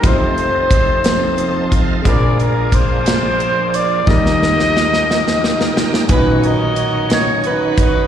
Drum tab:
HH |x-x-x-x-x-x-|x-x-x-x-x-x-|------------|x-x-x-x-x-x-|
SD |------o-----|------o-----|oooooooooooo|------o-----|
BD |o---o-----o-|o---o-------|o-----------|o---------o-|